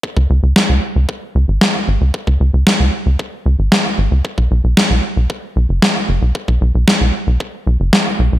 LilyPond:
<<
  \new Staff \with { instrumentName = "Analog synth bass" } { \clef bass \time 4/4 \key ces \lydian \tempo 4 = 114 r16 des,16 des,16 des,16 r16 des,16 r16 des,16 r8 des,16 aes,,16 r8 aes,,16 des,16 | r16 des,16 des,16 des,16 r16 des,16 r16 des,16 r8 des,16 aes,,16 r8 aes,,16 des,16 | r16 ces,16 ces,16 ces,16 r16 ces,16 r16 ces,16 r8 ces,16 ges,,16 r8 ges,,16 ces,16 | r16 ces,16 ces,16 ces,16 r16 ces,16 r16 ces,16 r8 ces,16 ges,,16 r8 ces,16 ces,16 | }
  \new DrumStaff \with { instrumentName = "Drums" } \drummode { \time 4/4 bd16 bd8. <bd sn>4 bd4 <bd sn>4 | bd16 bd8. <bd sn>4 bd4 <bd sn>4 | bd16 bd8. <bd sn>4 bd4 <bd sn>4 | bd16 bd8. <bd sn>4 bd4 <bd sn>4 | }
>>